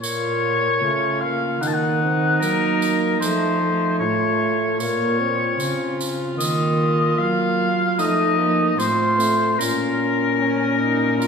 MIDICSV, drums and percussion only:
0, 0, Header, 1, 2, 480
1, 0, Start_track
1, 0, Key_signature, -5, "minor"
1, 0, Tempo, 795756
1, 12, Time_signature, 4, 2, 24, 8
1, 4812, Tempo, 806452
1, 6774, End_track
2, 0, Start_track
2, 0, Title_t, "Drums"
2, 21, Note_on_c, 9, 54, 66
2, 81, Note_off_c, 9, 54, 0
2, 982, Note_on_c, 9, 54, 45
2, 1042, Note_off_c, 9, 54, 0
2, 1462, Note_on_c, 9, 54, 48
2, 1523, Note_off_c, 9, 54, 0
2, 1701, Note_on_c, 9, 54, 48
2, 1762, Note_off_c, 9, 54, 0
2, 1944, Note_on_c, 9, 54, 74
2, 2004, Note_off_c, 9, 54, 0
2, 2896, Note_on_c, 9, 54, 44
2, 2957, Note_off_c, 9, 54, 0
2, 3377, Note_on_c, 9, 54, 50
2, 3437, Note_off_c, 9, 54, 0
2, 3623, Note_on_c, 9, 54, 55
2, 3683, Note_off_c, 9, 54, 0
2, 3863, Note_on_c, 9, 54, 75
2, 3924, Note_off_c, 9, 54, 0
2, 4820, Note_on_c, 9, 54, 43
2, 4880, Note_off_c, 9, 54, 0
2, 5299, Note_on_c, 9, 54, 51
2, 5358, Note_off_c, 9, 54, 0
2, 5540, Note_on_c, 9, 54, 53
2, 5599, Note_off_c, 9, 54, 0
2, 5782, Note_on_c, 9, 54, 74
2, 5841, Note_off_c, 9, 54, 0
2, 6740, Note_on_c, 9, 54, 45
2, 6774, Note_off_c, 9, 54, 0
2, 6774, End_track
0, 0, End_of_file